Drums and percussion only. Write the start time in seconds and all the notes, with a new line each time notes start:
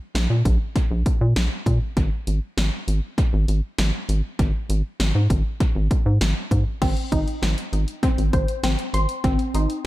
0.15 snare, closed hi-hat
0.45 kick, closed hi-hat
0.76 kick, closed hi-hat
1.06 kick, closed hi-hat
1.36 snare, closed hi-hat
1.66 kick, closed hi-hat
1.97 kick, closed hi-hat
2.27 closed hi-hat
2.58 snare, closed hi-hat
2.88 closed hi-hat
3.18 kick, closed hi-hat
3.48 closed hi-hat
3.78 snare, closed hi-hat
4.09 closed hi-hat
4.39 kick, closed hi-hat
4.70 closed hi-hat
5.00 snare, closed hi-hat
5.30 kick, closed hi-hat
5.60 kick, closed hi-hat
5.91 kick, closed hi-hat
6.21 snare, closed hi-hat
6.51 kick, closed hi-hat
6.82 kick, closed hi-hat, crash
6.97 closed hi-hat
7.12 kick, closed hi-hat
7.28 closed hi-hat
7.43 snare, closed hi-hat
7.58 closed hi-hat
7.73 closed hi-hat
7.88 closed hi-hat
8.03 kick, closed hi-hat
8.18 closed hi-hat
8.33 kick, closed hi-hat
8.48 closed hi-hat
8.64 snare, closed hi-hat
8.79 closed hi-hat
8.94 closed hi-hat
9.09 closed hi-hat
9.24 kick, closed hi-hat
9.39 closed hi-hat
9.55 closed hi-hat
9.70 closed hi-hat